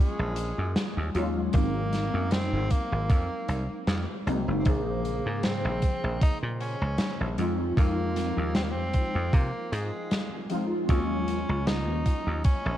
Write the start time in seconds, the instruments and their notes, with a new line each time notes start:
Already playing: synth keys F#3 G#3 A#3 C#4 F4
0.00 tenor saxophone G#3
0.19 slap bass A#1
0.36 closed hi-hat
0.58 slap bass F#2
0.76 snare, closed hi-hat
0.97 slap bass D#2
1.14 slap bass D#2, synth keys F#3 G#3 A#3 C#4 F4, closed hi-hat
1.52 slap bass G#1, synth keys F#3 G#3 A#3 C4 D#4, tenor saxophone A#3, kick, closed hi-hat
1.93 snare, closed hi-hat
2.14 slap bass F#2
2.31 tenor saxophone C4, snare, closed hi-hat
2.53 slap bass G#1
2.71 tenor saxophone A#3, kick, closed hi-hat
2.92 slap bass G#1
3.10 slap bass F2, kick, closed hi-hat
3.49 slap bass C2, closed hi-hat
3.70 muted slap bass stroke
3.87 slap bass F2, snare, closed hi-hat
4.26 slap bass C2, synth keys F#3 G#3 A#3 C4 D#4, closed hi-hat
4.48 slap bass F#1
4.59 tenor saxophone C4
4.64 slap bass A#1, synth keys C#3 F3 A#3 G#4 C5, tenor saxophone A#3, kick, closed hi-hat
5.05 closed hi-hat
5.26 slap bass G#2
5.43 tenor saxophone C4, snare, closed hi-hat
5.65 slap bass A#1
5.82 kick, closed hi-hat
6.04 slap bass A#1
6.21 tenor saxophone D#4, kick, closed hi-hat
6.43 slap bass A#2
6.61 tenor saxophone C#4, closed hi-hat
6.82 slap bass C#2
6.98 snare, closed hi-hat
7.21 slap bass A#1
7.37 slap bass F2, synth keys F3 G#3 C4 D#4 F4, closed hi-hat
7.76 slap bass F2, synth keys F3 G#3 C4 D#4 F4, tenor saxophone A#3, kick, closed hi-hat
8.16 snare, closed hi-hat
8.37 slap bass D#2
8.55 tenor saxophone C4, snare, closed hi-hat
8.63 tenor saxophone A#3
8.71 tenor saxophone C4
8.76 slap bass F2
8.94 kick, closed hi-hat
9.15 slap bass F2
9.33 slap bass C3, tenor saxophone A#3, kick, closed hi-hat
9.72 slap bass G#2, tenor saxophone G#3, closed hi-hat
10.11 snare, closed hi-hat
10.49 synth keys F3 G#3 C4 D#4 F4, closed hi-hat
10.88 slap bass D#2, synth keys F#3 G#3 A#3 C#4 F4, tenor saxophone C#4, kick, closed hi-hat
11.28 closed hi-hat
11.49 slap bass C#2
11.67 tenor saxophone D#4, snare, closed hi-hat
11.88 slap bass D#2
12.06 kick, closed hi-hat
12.27 slap bass D#2
12.44 tenor saxophone C#4, muted slap bass stroke, kick, closed hi-hat
12.66 slap bass A#1